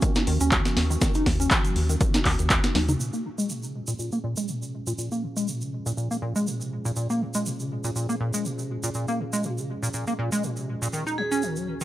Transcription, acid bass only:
0.02 D#3
0.16 D#4
0.27 D#3
0.41 C#4
0.52 D#3
0.65 F3
0.77 D#3
0.90 D#3
1.02 D#3
1.15 D#4
1.26 D#3
1.40 C#4
1.51 D#3
1.65 F#3
1.76 D#3
1.89 D#3
2.01 D#3
2.14 D#4
2.25 D#3
2.39 D#3
2.50 D#4
2.64 D#4
2.75 D#4
2.89 D#4
3.00 A#2
3.13 A#3
3.25 A#2
3.38 G#3
3.49 A#2
3.63 C#3
3.74 A#2
3.88 A#2
3.99 A#2
4.12 A#3
4.24 A#2
4.37 G#3
4.49 A#2
4.62 C3
4.73 A#2
4.87 A#2
4.98 A#2
5.12 A#3
5.23 A#2
5.36 G#3
5.48 A#2
5.61 C#3
5.72 A#2
5.86 A#2
5.97 A#2
6.11 A#3
6.22 A#2
6.36 G#3
6.47 A#2
6.60 C3
6.72 A#2
6.85 A#2
6.96 A#2
7.10 A#3
7.21 A#2
7.35 G#3
7.46 A#2
7.59 C#3
7.71 A#2
7.84 A#2
7.96 A#2
8.09 A#3
8.20 A#2
8.34 G#3
8.45 A#2
8.59 C3
8.70 A#2
8.83 A#2
8.95 A#2
9.08 A#3
9.20 A#2
9.33 G#3
9.44 A#2
9.58 C#3
9.69 A#2
9.83 A#2
9.94 A#2
10.07 A#3
10.19 A#2
10.32 G#3
10.43 A#2
10.57 C3
10.68 A#2
10.82 A#2
10.93 D#3
11.07 D#4
11.18 D#3
11.31 C#4
11.43 D#3
11.56 F#3
11.67 D#3
11.81 D#3

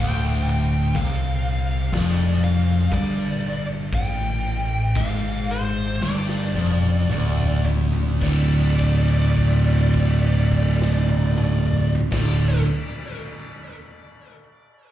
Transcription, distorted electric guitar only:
0.00 D2
0.95 C3
1.93 F2
2.91 G2
3.92 A2
4.96 G#2
6.02 G2
6.55 F2
7.10 D2
8.21 D2 A2
8.25 D3
12.11 D2 A2
12.15 D3

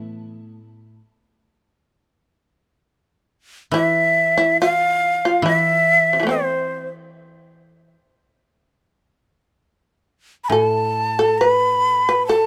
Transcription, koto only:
Already playing: A2 E3 A3 B3 E4
3.71 E3
5.42 E3
10.50 A2

